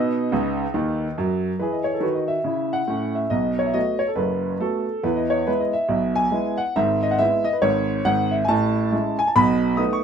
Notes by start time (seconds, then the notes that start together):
Already playing: B2 D#4 B4 D#5
0.32 C#2 C#3
0.74 D#2 D#3
1.18 F#2 F#3
1.59 E3 G#4 B4
1.72 D#5
1.84 C#5
1.94 A4
2.00 D#3 F#4 B4
2.15 D#5
2.28 E5
2.44 C#3 E4
2.73 F#5
2.88 A2 C#4
3.15 E5
3.30 B1 B2 D#5
3.59 C#5
3.66 E5
3.74 A3 B3 F#4 D#5
3.99 C#5
4.08 A4
4.16 F#1 F#2 B4
4.60 A3 B3 F#4 A4
5.03 E2 E3 B4
5.16 D#5
5.30 C#5
5.47 G#3 B3 E4 B4
5.60 D#5
5.73 E5
5.88 B1 B2
6.15 G#5
6.31 G#3 B3 E4
6.58 F#5
6.76 G#1 G#2 E5
7.02 D#5
7.11 F#5
7.19 G#3 B3 E4 E5
7.44 D#5
7.53 B4
7.62 G#1 G#2 C#5
8.05 G#1 G#2 F#5
8.31 E5
8.45 A2 G#5 A5
8.49 A1
8.92 G#3 C#4 E4
9.19 G#5
9.28 A5
9.35 B1 B2 B5
9.77 A3 B3 D#4 D#6
9.93 C#6